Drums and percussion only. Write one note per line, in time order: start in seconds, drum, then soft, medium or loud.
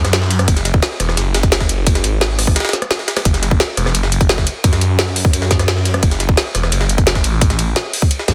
0.04 cross-stick soft
0.04 snare soft
0.04 closed hi-hat soft
0.13 snare loud
0.13 closed hi-hat loud
0.13 ride medium
0.22 snare soft
0.30 closed hi-hat medium
0.30 ride medium
0.39 cross-stick medium
0.39 closed hi-hat soft
0.48 kick loud
0.48 closed hi-hat medium
0.48 ride medium
0.56 snare soft
0.56 closed hi-hat soft
0.65 snare soft
0.65 closed hi-hat medium
0.65 ride medium
0.74 kick loud
0.82 snare loud
0.82 closed hi-hat loud
0.82 ride medium
1.00 cross-stick soft
1.00 closed hi-hat medium
1.00 ride medium
1.09 cross-stick soft
1.09 snare soft
1.17 snare soft
1.17 closed hi-hat loud
1.17 ride medium
1.34 snare loud
1.34 closed hi-hat medium
1.34 ride medium
1.43 kick loud
1.43 closed hi-hat soft
1.52 snare loud
1.52 closed hi-hat loud
1.52 ride medium
1.61 kick medium
1.61 snare medium
1.69 closed hi-hat medium
1.69 ride medium
1.87 kick loud
1.87 closed hi-hat medium
1.87 ride medium
1.95 snare medium
1.95 closed hi-hat soft
2.04 closed hi-hat medium
2.04 ride medium
2.21 snare loud
2.21 closed hi-hat loud
2.21 ride medium
2.39 cross-stick soft
2.39 open hi-hat medium
2.39 ride medium
2.47 kick loud
2.47 cross-stick soft
2.56 snare medium
2.56 closed hi-hat loud
2.56 ride medium
2.60 snare medium
2.60 ride medium
2.65 snare medium
2.65 ride medium
2.69 snare medium
2.69 ride medium
2.73 snare soft
2.73 closed hi-hat medium
2.82 cross-stick soft
2.82 closed hi-hat soft
2.91 snare loud
2.91 closed hi-hat loud
2.91 ride medium
2.99 snare soft
3.08 snare loud
3.08 closed hi-hat medium
3.08 ride medium
3.17 cross-stick medium
3.17 snare loud
3.17 closed hi-hat soft
3.17 ride medium
3.25 kick loud
3.25 closed hi-hat loud
3.25 ride medium
3.34 snare soft
3.34 closed hi-hat soft
3.43 snare soft
3.43 closed hi-hat medium
3.43 ride medium
3.51 kick loud
3.60 snare loud
3.60 closed hi-hat loud
3.60 ride medium
3.77 cross-stick soft
3.77 closed hi-hat medium
3.77 ride medium
3.86 cross-stick soft
3.86 snare soft
3.95 closed hi-hat loud
3.95 ride medium
4.03 snare medium
4.12 closed hi-hat medium
4.12 ride medium
4.21 kick loud
4.21 closed hi-hat soft
4.21 ride soft
4.29 snare loud
4.29 closed hi-hat loud
4.29 ride medium
4.38 kick medium
4.38 snare medium
4.47 closed hi-hat medium
4.47 ride medium
4.64 kick loud
4.64 closed hi-hat medium
4.64 ride medium
4.73 snare medium
4.73 closed hi-hat soft
4.81 closed hi-hat medium
4.81 ride medium
4.99 snare loud
4.99 closed hi-hat loud
4.99 ride medium
5.16 open hi-hat medium
5.16 ride medium
5.25 kick loud
5.33 closed hi-hat medium
5.33 ride medium
5.42 snare soft
5.51 kick medium
5.51 snare soft
5.51 closed hi-hat medium
5.51 ride medium
5.59 cross-stick soft
5.59 snare soft
5.59 closed hi-hat soft
5.68 snare loud
5.68 closed hi-hat loud
5.68 ride medium
5.77 snare soft
5.85 closed hi-hat medium
5.85 ride medium
5.94 cross-stick medium
5.94 closed hi-hat soft
6.03 kick loud
6.03 closed hi-hat medium
6.03 ride medium
6.11 snare soft
6.11 closed hi-hat soft
6.20 snare soft
6.20 closed hi-hat medium
6.20 ride medium
6.29 kick loud
6.37 snare loud
6.37 closed hi-hat medium
6.37 ride medium
6.55 cross-stick soft
6.55 closed hi-hat medium
6.55 ride medium
6.63 cross-stick soft
6.63 snare soft
6.72 closed hi-hat medium
6.72 ride medium
6.81 snare soft
6.89 closed hi-hat medium
6.89 ride medium
6.98 kick loud
6.98 closed hi-hat soft
6.98 ride soft
7.07 snare loud
7.07 closed hi-hat medium
7.07 ride medium
7.15 kick medium
7.15 snare medium
7.24 closed hi-hat medium
7.24 ride medium
7.41 kick loud
7.41 closed hi-hat medium
7.41 ride medium
7.50 snare medium
7.50 closed hi-hat soft
7.59 closed hi-hat medium
7.59 ride medium
7.76 snare loud
7.76 closed hi-hat medium
7.76 ride medium
7.93 open hi-hat medium
7.93 ride medium
8.02 kick loud
8.11 closed hi-hat medium
8.11 ride medium
8.19 snare soft
8.28 kick medium
8.28 snare soft
8.28 closed hi-hat medium
8.28 ride medium